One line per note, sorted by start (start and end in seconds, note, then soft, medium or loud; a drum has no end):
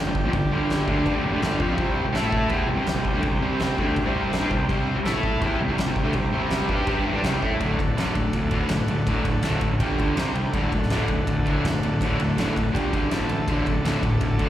0.00 1.74 G4 medium
0.00 1.74 D5 medium
0.00 1.75 G5 medium
0.04 0.22 G1 medium
0.04 0.21 G2 medium
0.04 0.21 D3 medium
0.15 kick medium
0.23 0.32 A#1 medium
0.23 0.33 A#2 medium
0.23 0.34 F3 loud
0.33 0.49 G1 medium
0.33 0.48 G2 medium
0.33 0.48 D3 medium
0.33 kick loud
0.33 crash medium
0.50 0.84 G1 loud
0.50 0.87 G2 loud
0.50 0.86 D3 medium
0.50 0.87 G3 loud
0.70 snare loud
0.70 crash medium
0.87 1.04 D2 medium
0.87 1.05 D3 medium
0.87 1.04 A3 medium
0.87 1.05 D4 loud
0.87 kick medium
1.04 1.13 G2 medium
1.04 1.14 G3 medium
1.04 1.14 D4 medium
1.04 kick loud
1.04 crash medium
1.13 1.23 D2 loud
1.13 1.22 D3 loud
1.13 1.23 A3 loud
1.23 1.31 F1 loud
1.23 1.32 F2 medium
1.23 1.32 C3 loud
1.32 1.40 D2 medium
1.32 1.40 D3 loud
1.32 1.42 A3 loud
1.41 1.58 G1 medium
1.41 1.59 G2 medium
1.41 1.59 D3 loud
1.41 1.60 G3 loud
1.41 snare loud
1.41 crash medium
1.59 1.77 F2 loud
1.59 1.77 F3 medium
1.59 1.78 C4 medium
1.59 1.78 F4 medium
1.59 kick medium
1.76 2.02 C2 medium
1.76 2.03 C3 medium
1.76 2.04 G3 loud
1.76 2.05 C4 loud
1.76 2.14 G4 medium
1.76 2.14 C5 medium
1.76 2.15 G5 medium
1.76 kick loud
1.76 crash medium
2.03 2.13 C2 medium
2.03 2.14 C3 medium
2.03 2.14 G3 medium
2.12 2.48 A2 medium
2.12 2.49 A3 medium
2.12 2.49 E4 medium
2.12 2.50 A4 medium
2.12 2.50 A4 loud
2.12 2.51 E5 medium
2.12 2.51 A5 medium
2.12 snare loud
2.12 crash medium
2.32 kick medium
2.48 2.66 E2 medium
2.48 2.67 E3 medium
2.48 2.68 B3 medium
2.48 2.68 E4 medium
2.48 5.00 G4 medium
2.48 5.01 C5 medium
2.48 kick loud
2.48 crash medium
2.53 5.02 G5 medium
2.66 2.76 C2 medium
2.66 2.75 C3 medium
2.66 2.76 G3 medium
2.76 2.85 C2 loud
2.76 2.85 C3 medium
2.76 2.86 G3 loud
2.85 muted picked electric bass stroke soft
2.85 muted distorted electric guitar stroke medium
2.85 snare loud
2.85 crash medium
2.95 3.12 C2 medium
2.95 3.10 C3 medium
2.95 3.11 G3 medium
3.05 kick medium
3.13 3.22 D2 medium
3.13 3.23 D3 medium
3.13 3.23 A3 loud
3.23 3.40 C2 medium
3.23 3.38 C3 medium
3.23 3.39 G3 medium
3.23 kick loud
3.23 crash medium
3.40 3.75 C2 loud
3.40 3.77 C3 medium
3.40 3.77 G3 loud
3.40 3.78 C4 loud
3.60 snare loud
3.60 crash medium
3.78 3.95 D2 loud
3.78 3.96 D3 medium
3.78 3.96 A3 loud
3.78 3.96 D4 medium
3.78 kick medium
3.96 muted distorted electric guitar stroke medium
3.96 muted picked electric bass stroke soft
3.96 kick loud
3.96 crash medium
4.03 4.38 C2 loud
4.03 4.41 C3 medium
4.03 4.40 G3 loud
4.03 4.40 C4 loud
4.33 snare loud
4.33 crash medium
4.39 4.49 G2 medium
4.39 4.50 G3 medium
4.39 4.50 D4 loud
4.50 4.67 C2 medium
4.50 4.65 C3 medium
4.50 4.66 G3 medium
4.50 kick medium
4.69 4.94 C2 loud
4.69 4.95 C3 loud
4.69 4.96 G3 loud
4.69 4.96 C4 loud
4.69 kick loud
4.69 crash medium
4.95 5.04 C2 medium
4.95 5.05 C3 medium
4.95 5.06 G3 medium
5.04 5.38 A2 loud
5.04 5.41 A3 medium
5.04 5.41 E4 loud
5.04 5.42 A4 medium
5.04 5.42 A4 loud
5.04 5.42 E5 medium
5.04 5.42 A5 medium
5.04 snare loud
5.04 crash medium
5.23 kick medium
5.40 5.58 E2 medium
5.40 5.59 E3 medium
5.40 5.60 B3 medium
5.40 5.60 E4 loud
5.40 7.55 G4 medium
5.40 7.55 C5 medium
5.40 7.56 G5 medium
5.40 kick loud
5.40 crash medium
5.59 5.67 C2 medium
5.59 5.67 C3 medium
5.59 5.69 G3 medium
5.68 5.77 C2 loud
5.68 5.77 C3 loud
5.68 5.78 G3 loud
5.78 muted picked electric bass stroke soft
5.78 muted distorted electric guitar stroke medium
5.78 snare loud
5.78 crash medium
5.85 6.03 C2 medium
5.85 6.01 C3 medium
5.85 6.02 G3 medium
5.96 kick medium
6.04 6.13 D2 medium
6.04 6.13 D3 medium
6.04 6.14 A3 loud
6.13 6.31 C2 medium
6.13 6.29 C3 medium
6.13 6.29 G3 medium
6.13 kick loud
6.13 crash medium
6.32 6.67 C2 loud
6.32 6.68 C3 medium
6.32 6.68 G3 medium
6.32 6.69 C4 loud
6.50 snare loud
6.50 crash medium
6.68 6.85 G2 loud
6.68 6.87 G3 medium
6.68 6.88 D4 medium
6.68 6.88 G4 loud
6.68 kick medium
6.87 6.94 C3 medium
6.87 6.95 C4 medium
6.87 6.96 G4 medium
6.87 kick loud
6.87 crash medium
6.95 7.04 G2 loud
6.95 7.05 G3 medium
6.95 7.05 D4 loud
7.05 7.13 A1 medium
7.05 7.13 A2 medium
7.05 7.14 E3 loud
7.13 7.21 G2 medium
7.13 7.23 G3 loud
7.13 7.23 D4 loud
7.22 7.40 C2 loud
7.22 7.41 C3 loud
7.22 7.42 G3 medium
7.22 7.41 C4 loud
7.22 snare loud
7.22 crash medium
7.41 7.59 A2 loud
7.41 7.59 A3 medium
7.41 7.60 E4 medium
7.41 7.60 A4 loud
7.41 kick medium
7.57 7.73 D1 medium
7.57 7.76 D2 medium
7.57 7.77 A2 loud
7.57 7.77 D3 loud
7.57 9.74 A4 medium
7.57 9.75 D5 medium
7.57 9.76 F#5 medium
7.57 kick loud
7.57 ride medium
7.77 7.92 D1 loud
7.77 7.94 D2 medium
7.77 7.94 A2 medium
7.77 kick medium
7.77 ride medium
7.96 8.10 D1 medium
7.96 8.13 D2 medium
7.96 8.14 A2 medium
7.96 8.14 D3 medium
7.96 snare loud
7.96 ride medium
8.15 8.28 D1 medium
8.15 8.31 D2 medium
8.15 8.31 A2 medium
8.15 kick medium
8.15 ride medium
8.33 8.59 D2 medium
8.33 8.50 D2 medium
8.33 8.50 A2 medium
8.33 kick loud
8.33 ride medium
8.51 8.68 D2 medium
8.51 8.69 A2 medium
8.51 8.69 D3 medium
8.51 kick medium
8.51 ride medium
8.69 8.82 F#1 medium
8.69 8.87 D2 medium
8.69 8.87 A2 medium
8.69 snare loud
8.69 ride loud
8.87 9.00 D1 medium
8.87 9.05 D2 medium
8.87 9.05 A2 medium
8.87 ride medium
9.06 9.20 D1 loud
9.06 9.23 D2 medium
9.06 9.24 A2 medium
9.06 9.24 D3 medium
9.06 kick loud
9.06 ride medium
9.25 9.38 D1 medium
9.25 9.41 D2 medium
9.25 9.42 A2 medium
9.25 kick medium
9.25 ride medium
9.43 9.56 D1 medium
9.43 9.60 D2 medium
9.43 9.61 A2 loud
9.43 9.61 D3 medium
9.43 snare loud
9.43 ride loud
9.61 9.74 A1 medium
9.61 9.79 D2 medium
9.61 9.79 A2 medium
9.61 kick medium
9.61 ride medium
9.78 9.93 G1 medium
9.78 9.97 G2 medium
9.78 9.97 D3 loud
9.78 9.98 G3 medium
9.78 10.14 G4 medium
9.78 10.17 D5 medium
9.78 10.17 G5 medium
9.78 kick loud
9.78 ride medium
9.99 10.11 D2 medium
9.99 10.15 G2 medium
9.99 10.15 D3 medium
9.99 10.15 G3 medium
9.99 kick medium
9.99 ride medium
10.15 10.29 C2 loud
10.15 10.33 C3 medium
10.15 10.33 G3 medium
10.15 10.34 C4 loud
10.15 10.53 G4 medium
10.15 10.53 C5 medium
10.15 10.54 G5 medium
10.15 snare loud
10.15 ride medium
10.34 10.48 C2 medium
10.34 10.51 C3 medium
10.34 10.52 G3 medium
10.34 ride medium
10.50 10.66 D1 loud
10.50 10.71 D2 medium
10.50 12.68 A4 medium
10.50 12.69 D5 medium
10.50 12.69 F#5 medium
10.50 kick loud
10.50 ride medium
10.54 10.71 A2 loud
10.54 10.71 D3 loud
10.72 10.85 D1 medium
10.72 10.89 D2 medium
10.72 10.88 A2 medium
10.72 kick medium
10.72 ride medium
10.83 snare soft
10.90 11.03 D1 medium
10.90 11.08 D2 medium
10.90 11.08 A2 medium
10.90 11.09 D3 loud
10.90 snare loud
10.90 ride medium
11.08 11.22 D1 medium
11.08 11.26 D2 medium
11.08 11.26 A2 medium
11.08 kick medium
11.08 ride medium
11.27 11.53 D2 medium
11.27 11.44 D2 medium
11.27 11.44 A2 medium
11.27 kick loud
11.27 ride medium
11.46 11.63 D2 medium
11.46 11.63 A2 medium
11.46 11.64 D3 loud
11.46 kick medium
11.46 ride medium
11.63 11.76 F#1 loud
11.63 11.81 D2 medium
11.63 11.81 A2 medium
11.63 snare loud
11.63 ride medium
11.82 11.95 D1 medium
11.82 11.99 D2 medium
11.82 12.00 A2 medium
11.82 ride medium
12.01 12.14 D1 loud
12.01 12.18 D2 medium
12.01 12.19 A2 loud
12.01 12.19 D3 loud
12.01 kick loud
12.01 ride medium
12.18 12.31 D1 loud
12.18 12.36 D2 medium
12.18 12.36 A2 medium
12.18 ride medium
12.36 12.49 D1 loud
12.36 12.54 D2 medium
12.36 12.55 A2 medium
12.36 12.55 D3 loud
12.36 snare loud
12.36 ride medium
12.55 12.69 D1 loud
12.55 12.72 D2 medium
12.55 12.72 A2 medium
12.55 kick medium
12.55 ride medium
12.72 12.87 G1 medium
12.72 12.90 G2 medium
12.72 12.91 D3 medium
12.72 12.91 G3 loud
12.72 13.11 G4 medium
12.72 13.11 D5 medium
12.72 13.11 G5 medium
12.72 kick loud
12.72 ride medium
12.92 13.05 G#1 medium
12.92 13.09 G2 medium
12.92 13.10 D3 medium
12.92 13.10 G3 medium
12.92 kick medium
12.92 ride medium
13.10 13.24 A1 medium
13.10 13.28 A2 medium
13.10 13.28 E3 medium
13.10 13.28 A3 medium
13.10 13.47 A4 medium
13.10 13.48 E5 medium
13.10 13.48 A5 medium
13.10 snare loud
13.10 ride loud
13.27 13.41 D2 medium
13.27 13.46 A2 medium
13.27 13.46 E3 medium
13.27 ride medium
13.47 13.60 D1 medium
13.47 13.65 D2 medium
13.47 13.65 A2 medium
13.47 13.66 D3 loud
13.47 14.49 A4 medium
13.47 14.49 D5 medium
13.47 14.49 F#5 medium
13.47 kick loud
13.47 ride medium
13.65 13.79 D1 medium
13.65 13.82 D2 medium
13.65 13.83 A2 medium
13.65 kick medium
13.65 ride medium
13.83 13.96 D1 medium
13.83 14.01 D2 medium
13.83 14.02 A2 medium
13.83 14.02 D3 medium
13.83 snare loud
13.83 ride medium
14.03 14.16 D1 medium
14.03 14.19 D2 medium
14.03 14.19 A2 medium
14.03 kick medium
14.03 ride medium
14.21 14.47 D2 medium
14.21 14.38 D2 medium
14.21 14.37 A2 medium
14.21 kick loud
14.21 ride medium
14.39 14.49 D2 medium
14.39 14.49 A2 medium
14.39 14.49 D3 medium
14.39 kick medium
14.39 ride medium